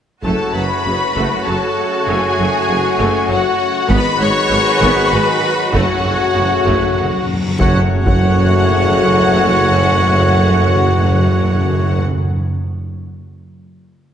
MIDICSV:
0, 0, Header, 1, 15, 480
1, 0, Start_track
1, 0, Tempo, 612870
1, 186, Time_signature, 3, 2, 24, 8
1, 11074, End_track
2, 0, Start_track
2, 0, Title_t, "Violin section"
2, 0, Program_c, 0, 48
2, 187, Note_on_c, 0, 81, 58
2, 412, Note_off_c, 0, 81, 0
2, 435, Note_on_c, 0, 83, 64
2, 1140, Note_on_c, 0, 81, 56
2, 1155, Note_off_c, 0, 83, 0
2, 1625, Note_off_c, 0, 81, 0
2, 1630, Note_on_c, 0, 80, 67
2, 2564, Note_off_c, 0, 80, 0
2, 2591, Note_on_c, 0, 78, 76
2, 3053, Note_off_c, 0, 78, 0
2, 3059, Note_on_c, 0, 83, 91
2, 3298, Note_off_c, 0, 83, 0
2, 3303, Note_on_c, 0, 85, 95
2, 4012, Note_on_c, 0, 83, 80
2, 4019, Note_off_c, 0, 85, 0
2, 4495, Note_off_c, 0, 83, 0
2, 4502, Note_on_c, 0, 78, 77
2, 5686, Note_off_c, 0, 78, 0
2, 5946, Note_on_c, 0, 78, 70
2, 6089, Note_off_c, 0, 78, 0
2, 6307, Note_on_c, 0, 78, 76
2, 9422, Note_off_c, 0, 78, 0
2, 11074, End_track
3, 0, Start_track
3, 0, Title_t, "Trumpet"
3, 0, Program_c, 1, 56
3, 184, Note_on_c, 1, 73, 47
3, 3026, Note_off_c, 1, 73, 0
3, 3051, Note_on_c, 1, 71, 70
3, 4462, Note_off_c, 1, 71, 0
3, 4501, Note_on_c, 1, 73, 66
3, 5678, Note_off_c, 1, 73, 0
3, 5952, Note_on_c, 1, 73, 55
3, 6092, Note_off_c, 1, 73, 0
3, 6313, Note_on_c, 1, 73, 67
3, 9424, Note_off_c, 1, 73, 0
3, 11074, End_track
4, 0, Start_track
4, 0, Title_t, "Violin section"
4, 0, Program_c, 2, 48
4, 202, Note_on_c, 2, 69, 52
4, 420, Note_off_c, 2, 69, 0
4, 431, Note_on_c, 2, 71, 60
4, 1139, Note_off_c, 2, 71, 0
4, 1144, Note_on_c, 2, 69, 56
4, 1623, Note_on_c, 2, 68, 68
4, 1628, Note_off_c, 2, 69, 0
4, 2580, Note_off_c, 2, 68, 0
4, 2588, Note_on_c, 2, 66, 66
4, 3050, Note_on_c, 2, 71, 83
4, 3051, Note_off_c, 2, 66, 0
4, 3279, Note_on_c, 2, 73, 92
4, 3288, Note_off_c, 2, 71, 0
4, 3992, Note_off_c, 2, 73, 0
4, 4000, Note_on_c, 2, 71, 86
4, 4489, Note_off_c, 2, 71, 0
4, 4491, Note_on_c, 2, 66, 70
4, 5680, Note_off_c, 2, 66, 0
4, 5935, Note_on_c, 2, 78, 63
4, 6083, Note_off_c, 2, 78, 0
4, 6304, Note_on_c, 2, 78, 75
4, 9420, Note_off_c, 2, 78, 0
4, 11074, End_track
5, 0, Start_track
5, 0, Title_t, "Woodwind section"
5, 0, Program_c, 3, 71
5, 190, Note_on_c, 3, 61, 50
5, 193, Note_on_c, 3, 73, 50
5, 194, Note_on_c, 3, 57, 51
5, 195, Note_on_c, 3, 78, 46
5, 3029, Note_off_c, 3, 61, 0
5, 3030, Note_off_c, 3, 73, 0
5, 3031, Note_off_c, 3, 57, 0
5, 3044, Note_on_c, 3, 63, 72
5, 3045, Note_on_c, 3, 56, 74
5, 3046, Note_on_c, 3, 71, 73
5, 4469, Note_off_c, 3, 78, 0
5, 4490, Note_off_c, 3, 56, 0
5, 4490, Note_off_c, 3, 63, 0
5, 4490, Note_off_c, 3, 71, 0
5, 4502, Note_on_c, 3, 78, 59
5, 4508, Note_on_c, 3, 73, 58
5, 4510, Note_on_c, 3, 57, 63
5, 4510, Note_on_c, 3, 61, 60
5, 5678, Note_off_c, 3, 78, 0
5, 5713, Note_off_c, 3, 73, 0
5, 5714, Note_off_c, 3, 57, 0
5, 5714, Note_off_c, 3, 61, 0
5, 5946, Note_on_c, 3, 61, 67
5, 5946, Note_on_c, 3, 73, 76
5, 5946, Note_on_c, 3, 78, 70
5, 5952, Note_on_c, 3, 57, 73
5, 9353, Note_off_c, 3, 73, 0
5, 9354, Note_off_c, 3, 61, 0
5, 9354, Note_off_c, 3, 78, 0
5, 9360, Note_off_c, 3, 57, 0
5, 11074, End_track
6, 0, Start_track
6, 0, Title_t, "French horn section"
6, 0, Program_c, 4, 60
6, 194, Note_on_c, 4, 57, 55
6, 200, Note_on_c, 4, 66, 52
6, 3031, Note_off_c, 4, 57, 0
6, 3034, Note_off_c, 4, 66, 0
6, 3052, Note_on_c, 4, 56, 75
6, 3056, Note_on_c, 4, 68, 77
6, 4462, Note_off_c, 4, 56, 0
6, 4464, Note_off_c, 4, 68, 0
6, 4497, Note_on_c, 4, 66, 65
6, 4498, Note_on_c, 4, 57, 74
6, 5676, Note_off_c, 4, 66, 0
6, 5677, Note_off_c, 4, 57, 0
6, 5941, Note_on_c, 4, 57, 74
6, 5944, Note_on_c, 4, 66, 69
6, 9349, Note_off_c, 4, 57, 0
6, 9351, Note_off_c, 4, 66, 0
6, 11074, End_track
7, 0, Start_track
7, 0, Title_t, "Viola section"
7, 0, Program_c, 5, 48
7, 183, Note_on_c, 5, 57, 49
7, 185, Note_on_c, 5, 66, 52
7, 410, Note_off_c, 5, 57, 0
7, 424, Note_on_c, 5, 54, 36
7, 487, Note_off_c, 5, 54, 0
7, 674, Note_on_c, 5, 49, 39
7, 736, Note_off_c, 5, 49, 0
7, 906, Note_on_c, 5, 57, 55
7, 1132, Note_off_c, 5, 57, 0
7, 1148, Note_on_c, 5, 54, 42
7, 1211, Note_off_c, 5, 54, 0
7, 1629, Note_on_c, 5, 57, 59
7, 1852, Note_off_c, 5, 57, 0
7, 1864, Note_on_c, 5, 54, 36
7, 1927, Note_off_c, 5, 54, 0
7, 2099, Note_on_c, 5, 49, 48
7, 2162, Note_off_c, 5, 49, 0
7, 2337, Note_on_c, 5, 57, 65
7, 2562, Note_off_c, 5, 57, 0
7, 2571, Note_on_c, 5, 54, 46
7, 2634, Note_off_c, 5, 54, 0
7, 3027, Note_off_c, 5, 66, 0
7, 3049, Note_on_c, 5, 59, 74
7, 3049, Note_on_c, 5, 66, 73
7, 3275, Note_off_c, 5, 59, 0
7, 3292, Note_on_c, 5, 56, 56
7, 3355, Note_off_c, 5, 56, 0
7, 3523, Note_on_c, 5, 54, 58
7, 3586, Note_off_c, 5, 54, 0
7, 3771, Note_on_c, 5, 59, 80
7, 3996, Note_off_c, 5, 59, 0
7, 4009, Note_on_c, 5, 56, 60
7, 4072, Note_off_c, 5, 56, 0
7, 4487, Note_on_c, 5, 57, 58
7, 4717, Note_off_c, 5, 57, 0
7, 4734, Note_on_c, 5, 54, 36
7, 4797, Note_off_c, 5, 54, 0
7, 4971, Note_on_c, 5, 49, 49
7, 5034, Note_off_c, 5, 49, 0
7, 5207, Note_on_c, 5, 57, 56
7, 5439, Note_off_c, 5, 57, 0
7, 5453, Note_on_c, 5, 54, 41
7, 5516, Note_off_c, 5, 54, 0
7, 5755, Note_off_c, 5, 66, 0
7, 5947, Note_on_c, 5, 57, 64
7, 5948, Note_on_c, 5, 66, 64
7, 6090, Note_off_c, 5, 57, 0
7, 6090, Note_off_c, 5, 66, 0
7, 6306, Note_on_c, 5, 57, 60
7, 6307, Note_on_c, 5, 66, 64
7, 9421, Note_off_c, 5, 57, 0
7, 9422, Note_off_c, 5, 66, 0
7, 11074, End_track
8, 0, Start_track
8, 0, Title_t, "Trombone section"
8, 0, Program_c, 6, 61
8, 199, Note_on_c, 6, 54, 50
8, 201, Note_on_c, 6, 49, 46
8, 3034, Note_off_c, 6, 54, 0
8, 3035, Note_off_c, 6, 49, 0
8, 3053, Note_on_c, 6, 51, 66
8, 3054, Note_on_c, 6, 54, 64
8, 4463, Note_off_c, 6, 51, 0
8, 4479, Note_on_c, 6, 49, 58
8, 5667, Note_off_c, 6, 49, 0
8, 5674, Note_off_c, 6, 54, 0
8, 5957, Note_on_c, 6, 49, 63
8, 5958, Note_on_c, 6, 54, 64
8, 9365, Note_off_c, 6, 49, 0
8, 9365, Note_off_c, 6, 54, 0
8, 11074, End_track
9, 0, Start_track
9, 0, Title_t, "Cello section"
9, 0, Program_c, 7, 48
9, 184, Note_on_c, 7, 42, 51
9, 246, Note_off_c, 7, 42, 0
9, 423, Note_on_c, 7, 42, 34
9, 485, Note_off_c, 7, 42, 0
9, 670, Note_on_c, 7, 42, 33
9, 733, Note_off_c, 7, 42, 0
9, 906, Note_on_c, 7, 42, 57
9, 969, Note_off_c, 7, 42, 0
9, 1149, Note_on_c, 7, 42, 46
9, 1212, Note_off_c, 7, 42, 0
9, 1626, Note_on_c, 7, 42, 55
9, 1688, Note_off_c, 7, 42, 0
9, 1864, Note_on_c, 7, 42, 42
9, 1927, Note_off_c, 7, 42, 0
9, 2106, Note_on_c, 7, 42, 34
9, 2169, Note_off_c, 7, 42, 0
9, 2350, Note_on_c, 7, 42, 62
9, 2412, Note_off_c, 7, 42, 0
9, 2577, Note_on_c, 7, 42, 53
9, 2640, Note_off_c, 7, 42, 0
9, 3048, Note_on_c, 7, 44, 71
9, 3111, Note_off_c, 7, 44, 0
9, 3294, Note_on_c, 7, 44, 49
9, 3357, Note_off_c, 7, 44, 0
9, 3534, Note_on_c, 7, 44, 50
9, 3597, Note_off_c, 7, 44, 0
9, 3775, Note_on_c, 7, 44, 75
9, 3838, Note_off_c, 7, 44, 0
9, 4015, Note_on_c, 7, 44, 60
9, 4078, Note_off_c, 7, 44, 0
9, 4490, Note_on_c, 7, 42, 62
9, 4553, Note_off_c, 7, 42, 0
9, 4739, Note_on_c, 7, 42, 45
9, 4801, Note_off_c, 7, 42, 0
9, 4979, Note_on_c, 7, 42, 41
9, 5042, Note_off_c, 7, 42, 0
9, 5216, Note_on_c, 7, 42, 59
9, 5279, Note_off_c, 7, 42, 0
9, 5467, Note_on_c, 7, 42, 47
9, 5529, Note_off_c, 7, 42, 0
9, 5950, Note_on_c, 7, 42, 65
9, 6091, Note_off_c, 7, 42, 0
9, 6308, Note_on_c, 7, 42, 73
9, 9422, Note_off_c, 7, 42, 0
9, 11074, End_track
10, 0, Start_track
10, 0, Title_t, "Timpani"
10, 0, Program_c, 8, 47
10, 4617, Note_on_c, 8, 42, 32
10, 4672, Note_off_c, 8, 42, 0
10, 4682, Note_on_c, 8, 42, 33
10, 4726, Note_off_c, 8, 42, 0
10, 4735, Note_on_c, 8, 42, 37
10, 4790, Note_off_c, 8, 42, 0
10, 4799, Note_on_c, 8, 42, 37
10, 4852, Note_off_c, 8, 42, 0
10, 4860, Note_on_c, 8, 42, 39
10, 4911, Note_off_c, 8, 42, 0
10, 4920, Note_on_c, 8, 42, 38
10, 4969, Note_off_c, 8, 42, 0
10, 4979, Note_on_c, 8, 42, 37
10, 5027, Note_off_c, 8, 42, 0
10, 5037, Note_on_c, 8, 42, 43
10, 5087, Note_off_c, 8, 42, 0
10, 5096, Note_on_c, 8, 42, 43
10, 5149, Note_off_c, 8, 42, 0
10, 5161, Note_on_c, 8, 42, 47
10, 5205, Note_off_c, 8, 42, 0
10, 5214, Note_on_c, 8, 42, 57
10, 5259, Note_off_c, 8, 42, 0
10, 5269, Note_on_c, 8, 42, 54
10, 5317, Note_off_c, 8, 42, 0
10, 5326, Note_on_c, 8, 42, 56
10, 5376, Note_off_c, 8, 42, 0
10, 5386, Note_on_c, 8, 42, 56
10, 5428, Note_off_c, 8, 42, 0
10, 5438, Note_on_c, 8, 42, 61
10, 5493, Note_off_c, 8, 42, 0
10, 5502, Note_on_c, 8, 42, 65
10, 5558, Note_off_c, 8, 42, 0
10, 5566, Note_on_c, 8, 42, 67
10, 5620, Note_off_c, 8, 42, 0
10, 5629, Note_on_c, 8, 42, 69
10, 5677, Note_off_c, 8, 42, 0
10, 5686, Note_on_c, 8, 42, 72
10, 5737, Note_off_c, 8, 42, 0
10, 5746, Note_on_c, 8, 42, 79
10, 5791, Note_off_c, 8, 42, 0
10, 5800, Note_on_c, 8, 42, 85
10, 5847, Note_off_c, 8, 42, 0
10, 5856, Note_on_c, 8, 42, 85
10, 5914, Note_off_c, 8, 42, 0
10, 5951, Note_on_c, 8, 42, 77
10, 6007, Note_off_c, 8, 42, 0
10, 6007, Note_on_c, 8, 42, 75
10, 6064, Note_off_c, 8, 42, 0
10, 6065, Note_on_c, 8, 42, 72
10, 6122, Note_off_c, 8, 42, 0
10, 6305, Note_on_c, 8, 42, 62
10, 6354, Note_off_c, 8, 42, 0
10, 6355, Note_on_c, 8, 42, 54
10, 6404, Note_off_c, 8, 42, 0
10, 6404, Note_on_c, 8, 42, 64
10, 6454, Note_off_c, 8, 42, 0
10, 6458, Note_on_c, 8, 42, 60
10, 6507, Note_off_c, 8, 42, 0
10, 6507, Note_on_c, 8, 42, 64
10, 6556, Note_off_c, 8, 42, 0
10, 6560, Note_on_c, 8, 42, 57
10, 6607, Note_off_c, 8, 42, 0
10, 6607, Note_on_c, 8, 42, 65
10, 6657, Note_off_c, 8, 42, 0
10, 6658, Note_on_c, 8, 42, 55
10, 6707, Note_off_c, 8, 42, 0
10, 6707, Note_on_c, 8, 42, 56
10, 6757, Note_off_c, 8, 42, 0
10, 6761, Note_on_c, 8, 42, 53
10, 6807, Note_off_c, 8, 42, 0
10, 6807, Note_on_c, 8, 42, 61
10, 6856, Note_off_c, 8, 42, 0
10, 6859, Note_on_c, 8, 42, 55
10, 6909, Note_off_c, 8, 42, 0
10, 6911, Note_on_c, 8, 42, 61
10, 6960, Note_off_c, 8, 42, 0
10, 6960, Note_on_c, 8, 42, 59
10, 7009, Note_off_c, 8, 42, 0
10, 7009, Note_on_c, 8, 42, 58
10, 7058, Note_off_c, 8, 42, 0
10, 7058, Note_on_c, 8, 42, 57
10, 7108, Note_off_c, 8, 42, 0
10, 7108, Note_on_c, 8, 42, 67
10, 7158, Note_off_c, 8, 42, 0
10, 7158, Note_on_c, 8, 42, 55
10, 7208, Note_off_c, 8, 42, 0
10, 7212, Note_on_c, 8, 42, 62
10, 7262, Note_off_c, 8, 42, 0
10, 7264, Note_on_c, 8, 42, 54
10, 7314, Note_off_c, 8, 42, 0
10, 7314, Note_on_c, 8, 42, 64
10, 7360, Note_off_c, 8, 42, 0
10, 7360, Note_on_c, 8, 42, 57
10, 7409, Note_off_c, 8, 42, 0
10, 7410, Note_on_c, 8, 42, 66
10, 7460, Note_off_c, 8, 42, 0
10, 7461, Note_on_c, 8, 42, 56
10, 7507, Note_off_c, 8, 42, 0
10, 7507, Note_on_c, 8, 42, 58
10, 7556, Note_off_c, 8, 42, 0
10, 7556, Note_on_c, 8, 42, 53
10, 7604, Note_off_c, 8, 42, 0
10, 7604, Note_on_c, 8, 42, 66
10, 7651, Note_off_c, 8, 42, 0
10, 7651, Note_on_c, 8, 42, 55
10, 7700, Note_off_c, 8, 42, 0
10, 7703, Note_on_c, 8, 42, 60
10, 7753, Note_off_c, 8, 42, 0
10, 7754, Note_on_c, 8, 42, 59
10, 7803, Note_off_c, 8, 42, 0
10, 7807, Note_on_c, 8, 42, 67
10, 7854, Note_off_c, 8, 42, 0
10, 7854, Note_on_c, 8, 42, 57
10, 7903, Note_off_c, 8, 42, 0
10, 7905, Note_on_c, 8, 42, 60
10, 7953, Note_off_c, 8, 42, 0
10, 7953, Note_on_c, 8, 42, 56
10, 8003, Note_off_c, 8, 42, 0
10, 8005, Note_on_c, 8, 42, 57
10, 8055, Note_off_c, 8, 42, 0
10, 8058, Note_on_c, 8, 42, 54
10, 8107, Note_off_c, 8, 42, 0
10, 8110, Note_on_c, 8, 42, 62
10, 8155, Note_off_c, 8, 42, 0
10, 8155, Note_on_c, 8, 42, 59
10, 8203, Note_off_c, 8, 42, 0
10, 8203, Note_on_c, 8, 42, 64
10, 8253, Note_off_c, 8, 42, 0
10, 8256, Note_on_c, 8, 42, 60
10, 8303, Note_off_c, 8, 42, 0
10, 8303, Note_on_c, 8, 42, 60
10, 8353, Note_off_c, 8, 42, 0
10, 8359, Note_on_c, 8, 42, 55
10, 8408, Note_off_c, 8, 42, 0
10, 8408, Note_on_c, 8, 42, 63
10, 8453, Note_off_c, 8, 42, 0
10, 8453, Note_on_c, 8, 42, 56
10, 8503, Note_off_c, 8, 42, 0
10, 8504, Note_on_c, 8, 42, 65
10, 8551, Note_off_c, 8, 42, 0
10, 8551, Note_on_c, 8, 42, 58
10, 8600, Note_off_c, 8, 42, 0
10, 8603, Note_on_c, 8, 42, 66
10, 8652, Note_off_c, 8, 42, 0
10, 8653, Note_on_c, 8, 42, 54
10, 8703, Note_off_c, 8, 42, 0
10, 8704, Note_on_c, 8, 42, 66
10, 8752, Note_off_c, 8, 42, 0
10, 8752, Note_on_c, 8, 42, 58
10, 8801, Note_off_c, 8, 42, 0
10, 8802, Note_on_c, 8, 42, 58
10, 8851, Note_off_c, 8, 42, 0
10, 8898, Note_on_c, 8, 42, 60
10, 8946, Note_off_c, 8, 42, 0
10, 8946, Note_on_c, 8, 42, 60
10, 8992, Note_off_c, 8, 42, 0
10, 8992, Note_on_c, 8, 42, 63
10, 9042, Note_off_c, 8, 42, 0
10, 9042, Note_on_c, 8, 42, 61
10, 9092, Note_off_c, 8, 42, 0
10, 9093, Note_on_c, 8, 42, 65
10, 9140, Note_off_c, 8, 42, 0
10, 9140, Note_on_c, 8, 42, 60
10, 9187, Note_off_c, 8, 42, 0
10, 9187, Note_on_c, 8, 42, 57
10, 9237, Note_off_c, 8, 42, 0
10, 9238, Note_on_c, 8, 42, 57
10, 9287, Note_off_c, 8, 42, 0
10, 9287, Note_on_c, 8, 42, 68
10, 9334, Note_off_c, 8, 42, 0
10, 9334, Note_on_c, 8, 42, 59
10, 9383, Note_off_c, 8, 42, 0
10, 9383, Note_on_c, 8, 42, 61
10, 9433, Note_off_c, 8, 42, 0
10, 9437, Note_on_c, 8, 42, 57
10, 9487, Note_off_c, 8, 42, 0
10, 9488, Note_on_c, 8, 42, 61
10, 9537, Note_off_c, 8, 42, 0
10, 9537, Note_on_c, 8, 42, 65
10, 9587, Note_off_c, 8, 42, 0
10, 9588, Note_on_c, 8, 42, 58
10, 9638, Note_off_c, 8, 42, 0
10, 9639, Note_on_c, 8, 42, 63
10, 9689, Note_off_c, 8, 42, 0
10, 9690, Note_on_c, 8, 42, 60
10, 9739, Note_off_c, 8, 42, 0
10, 11074, End_track
11, 0, Start_track
11, 0, Title_t, "Double bass section"
11, 0, Program_c, 10, 48
11, 191, Note_on_c, 10, 30, 53
11, 254, Note_off_c, 10, 30, 0
11, 434, Note_on_c, 10, 30, 36
11, 496, Note_off_c, 10, 30, 0
11, 676, Note_on_c, 10, 30, 37
11, 739, Note_off_c, 10, 30, 0
11, 914, Note_on_c, 10, 30, 52
11, 976, Note_off_c, 10, 30, 0
11, 1154, Note_on_c, 10, 30, 34
11, 1217, Note_off_c, 10, 30, 0
11, 1634, Note_on_c, 10, 30, 56
11, 1696, Note_off_c, 10, 30, 0
11, 1879, Note_on_c, 10, 30, 44
11, 1941, Note_off_c, 10, 30, 0
11, 2110, Note_on_c, 10, 30, 43
11, 2173, Note_off_c, 10, 30, 0
11, 2347, Note_on_c, 10, 30, 65
11, 2410, Note_off_c, 10, 30, 0
11, 2577, Note_on_c, 10, 30, 47
11, 2640, Note_off_c, 10, 30, 0
11, 3053, Note_on_c, 10, 32, 75
11, 3115, Note_off_c, 10, 32, 0
11, 3286, Note_on_c, 10, 32, 52
11, 3348, Note_off_c, 10, 32, 0
11, 3532, Note_on_c, 10, 32, 57
11, 3595, Note_off_c, 10, 32, 0
11, 3771, Note_on_c, 10, 32, 75
11, 3833, Note_off_c, 10, 32, 0
11, 4010, Note_on_c, 10, 32, 55
11, 4072, Note_off_c, 10, 32, 0
11, 4492, Note_on_c, 10, 30, 69
11, 4555, Note_off_c, 10, 30, 0
11, 4750, Note_on_c, 10, 30, 43
11, 4812, Note_off_c, 10, 30, 0
11, 4991, Note_on_c, 10, 30, 44
11, 5054, Note_off_c, 10, 30, 0
11, 5226, Note_on_c, 10, 30, 56
11, 5288, Note_off_c, 10, 30, 0
11, 5461, Note_on_c, 10, 30, 40
11, 5524, Note_off_c, 10, 30, 0
11, 5951, Note_on_c, 10, 30, 62
11, 6092, Note_off_c, 10, 30, 0
11, 6304, Note_on_c, 10, 30, 55
11, 9420, Note_off_c, 10, 30, 0
11, 11074, End_track
12, 0, Start_track
12, 0, Title_t, "Tuba"
12, 0, Program_c, 11, 58
12, 188, Note_on_c, 11, 30, 49
12, 284, Note_off_c, 11, 30, 0
12, 431, Note_on_c, 11, 30, 38
12, 527, Note_off_c, 11, 30, 0
12, 671, Note_on_c, 11, 30, 36
12, 768, Note_off_c, 11, 30, 0
12, 913, Note_on_c, 11, 30, 50
12, 1009, Note_off_c, 11, 30, 0
12, 1158, Note_on_c, 11, 30, 36
12, 1253, Note_off_c, 11, 30, 0
12, 1631, Note_on_c, 11, 30, 53
12, 1727, Note_off_c, 11, 30, 0
12, 1866, Note_on_c, 11, 30, 46
12, 1962, Note_off_c, 11, 30, 0
12, 2106, Note_on_c, 11, 30, 43
12, 2202, Note_off_c, 11, 30, 0
12, 2338, Note_on_c, 11, 30, 64
12, 2434, Note_off_c, 11, 30, 0
12, 2578, Note_on_c, 11, 30, 47
12, 2674, Note_off_c, 11, 30, 0
12, 3048, Note_on_c, 11, 32, 71
12, 3145, Note_off_c, 11, 32, 0
12, 3287, Note_on_c, 11, 32, 59
12, 3385, Note_off_c, 11, 32, 0
12, 3526, Note_on_c, 11, 32, 49
12, 3624, Note_off_c, 11, 32, 0
12, 3770, Note_on_c, 11, 32, 84
12, 3867, Note_off_c, 11, 32, 0
12, 4012, Note_on_c, 11, 32, 51
12, 4109, Note_off_c, 11, 32, 0
12, 4490, Note_on_c, 11, 30, 66
12, 4588, Note_off_c, 11, 30, 0
12, 4733, Note_on_c, 11, 30, 49
12, 4831, Note_off_c, 11, 30, 0
12, 4975, Note_on_c, 11, 30, 45
12, 5073, Note_off_c, 11, 30, 0
12, 5218, Note_on_c, 11, 30, 64
12, 5316, Note_off_c, 11, 30, 0
12, 5462, Note_on_c, 11, 30, 45
12, 5560, Note_off_c, 11, 30, 0
12, 5949, Note_on_c, 11, 30, 64
12, 6090, Note_off_c, 11, 30, 0
12, 6296, Note_on_c, 11, 30, 66
12, 9416, Note_off_c, 11, 30, 0
12, 11074, End_track
13, 0, Start_track
13, 0, Title_t, "Impact"
13, 0, Program_c, 12, 103
13, 5950, Note_on_c, 12, 60, 67
13, 7389, Note_off_c, 12, 60, 0
13, 11074, End_track
14, 0, Start_track
14, 0, Title_t, "Reverse cymbal"
14, 0, Program_c, 13, 119
14, 4497, Note_on_c, 13, 60, 51
14, 5949, Note_off_c, 13, 60, 0
14, 11074, End_track
15, 0, Start_track
15, 0, Title_t, "Taiko and cinematic ensemble drums"
15, 184, Note_on_c, 9, 41, 50
15, 262, Note_off_c, 9, 41, 0
15, 908, Note_on_c, 9, 41, 34
15, 986, Note_off_c, 9, 41, 0
15, 3052, Note_on_c, 9, 41, 88
15, 3131, Note_off_c, 9, 41, 0
15, 3770, Note_on_c, 9, 41, 75
15, 3848, Note_off_c, 9, 41, 0
15, 4491, Note_on_c, 9, 41, 85
15, 4569, Note_off_c, 9, 41, 0
15, 5224, Note_on_c, 9, 41, 76
15, 5303, Note_off_c, 9, 41, 0
15, 5952, Note_on_c, 9, 41, 87
15, 6030, Note_off_c, 9, 41, 0
15, 6316, Note_on_c, 9, 41, 89
15, 6394, Note_off_c, 9, 41, 0
15, 11074, End_track
0, 0, End_of_file